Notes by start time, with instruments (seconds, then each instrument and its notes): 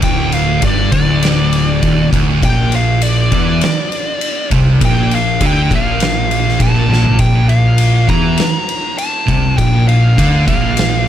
0.02 picked electric bass D1, distorted electric guitar D2, lead electric guitar G5, kick, ride
0.32 lead electric guitar F5, ride
0.62 picked electric bass G1, distorted electric guitar G2, lead electric guitar D5, kick, ride
0.92 picked electric bass D1, distorted electric guitar D2, lead electric guitar D5, kick, ride
1.23 snare, ride
1.53 ride
1.81 picked electric bass D#1, distorted electric guitar D#2, kick, ride
2.11 picked electric bass D1, distorted electric guitar D2, kick, ride
2.43 picked electric bass A#1, distorted electric guitar A#2, lead electric guitar G5, kick, ride
2.72 lead electric guitar F5, ride
3.02 lead electric guitar D5, ride
3.31 picked electric bass E2, distorted electric guitar E3, lead electric guitar D5, kick, ride
3.61 snare, ride
3.92 ride
4.21 ride
4.51 picked electric bass C2, distorted electric guitar C3, kick, ride
4.81 picked electric bass A#1, distorted electric guitar A#2, kick, ride
4.85 lead electric guitar G5
5.11 lead electric guitar F5, ride
5.41 picked electric bass D2, distorted electric guitar D3, kick, ride
5.46 lead electric guitar G5
5.71 picked electric bass A#1, distorted electric guitar A#2, kick, ride
5.75 lead electric guitar F5
6.00 snare, ride
6.31 ride
6.48 snare
6.59 picked electric bass A#1, distorted electric guitar A#2, lead electric guitar A5, kick, ride
6.89 picked electric bass A#1, distorted electric guitar A#2, snare
7.04 floor tom
7.19 picked electric bass A#1, distorted electric guitar A#2, lead electric guitar G5, kick, ride
7.49 lead electric guitar F5, ride
7.78 ride
8.07 picked electric bass E2, distorted electric guitar E3, lead electric guitar A#5, kick, ride
8.38 snare, ride
8.69 ride
8.98 lead electric guitar A5, ride
9.26 picked electric bass C2, distorted electric guitar C3, kick, ride
9.57 picked electric bass A#1, distorted electric guitar A#2, lead electric guitar G5, kick, ride
9.88 lead electric guitar F5, ride
10.16 picked electric bass D2, distorted electric guitar D3, kick, ride
10.46 picked electric bass A#1, distorted electric guitar A#2, lead electric guitar F5, kick, ride
10.77 snare, ride